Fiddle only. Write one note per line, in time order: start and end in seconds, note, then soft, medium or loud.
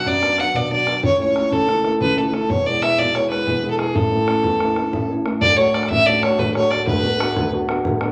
0.07 0.41 D5 loud
0.40 0.57 F#5 loud
0.56 0.72 D5 medium
0.72 1.02 D5 loud
1.04 1.19 C#5 loud
1.21 1.54 C#5 loud
1.52 1.89 A4 loud
2.01 2.19 B4 loud
2.18 2.28 A4 medium
2.29 2.35 B4 medium
2.34 2.51 A4 medium
2.50 2.68 C#5 loud
2.66 2.84 D5 loud
2.82 3.00 E5 loud
2.98 3.17 D5 loud
3.15 3.30 C#5 medium
3.30 3.68 B4 medium
3.71 3.79 A4 medium
3.79 3.97 G#4 medium
3.95 5.09 A4 medium
5.41 5.58 D5 loud
5.57 5.76 C#5 loud
5.74 5.89 D5 medium
5.90 6.08 E5 loud
6.06 6.24 D5 loud
6.23 6.40 C#5 loud
6.39 6.54 B4 medium
6.54 6.72 C#5 loud
6.70 6.87 D5 loud
6.87 7.48 B4 loud